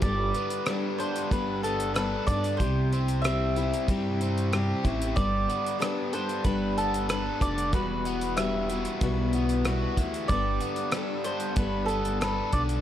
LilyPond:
<<
  \new Staff \with { instrumentName = "Mandolin" } { \time 4/4 \key g \major \tempo 4 = 94 d''4 r8 c''8 b'8 a'8 b'8 d''8 | c''4 e''2 r4 | d''4 r8 c''8 b'8 a'8 b'8 d''8 | b'4 e''2 r4 |
d''4 r8 c''8 b'8 a'8 b'8 d''8 | }
  \new Staff \with { instrumentName = "Steel-string acoustic guitar" } { \time 4/4 \key g \major <g b d' a'>4 <g d' a'>4 <g b d' a'>4 <g b d' a'>8 <b d' a'>8 | <c g c' e' g'>4 <g c' e' g'>8 <c' e' g'>8 <c g c' e' g'>4 <g c' e' g'>8 <c' e' g'>8 | <g b d' a'>4 <g b d' a'>8 <d' a'>8 <g b d' a'>4 <g b d' a'>8 <b d' a'>8 | <e, b, g b e' fis'>4 <g b e' fis'>8 <g b e' fis'>8 <e, b, g b e' fis'>4 <g b e' fis'>8 <g b e' fis'>8 |
<g b d' a'>4 <g d' a'>4 <g b d' a'>4 <g b d' a'>8 <b d' a'>8 | }
  \new Staff \with { instrumentName = "Overdriven electric guitar" } { \time 4/4 \key g \major g8 b8 g8 d'8 g8 b8 a'8 d'8 | c8 c'8 g8 e'8 g8 c'8 g'8 e'8 | g8 b8 g8 d'8 g8 b8 a'8 d'8 | e,8 b8 g8 e'8 g8 b8 fis'8 e'8 |
g8 b8 g8 d'8 g8 b8 a'8 d'8 | }
  \new Staff \with { instrumentName = "Upright bass" } { \clef bass \time 4/4 \key g \major g,,8 r4. g,,4. g,8 | c,2 g,4. a,,8 | g,,8 r4. g,,4. f,,8 | e,,2 b,,4. d,8 |
g,,8 r4. g,,4. b,,8 | }
  \new DrumStaff \with { instrumentName = "Drums" } \drummode { \time 4/4 <hh bd>8 hh16 hh16 <hh ss>8 hh16 hh16 <hh bd>8 hh16 hh16 <hh ss>8 <hh bd>16 hh16 | <hh bd>8 hh16 hh16 <hh ss>8 hh16 hh16 <hh bd>8 hh16 hh16 <hh ss>8 <hh bd>16 hh16 | <hh bd>8 hh16 hh16 <hh ss>8 hh16 hh16 <hh bd>8 hh16 hh16 <hh ss>8 <hh bd>16 hh16 | <hh bd>8 hh16 hh16 <hh ss>8 hh16 hh16 <hh bd>8 hh16 hh16 <hh ss>8 <hh bd>16 hh16 |
<hh bd>8 hh16 hh16 <hh ss>8 hh16 hh16 <hh bd>8 hh16 hh16 <hh ss>8 <hh bd>16 hh16 | }
>>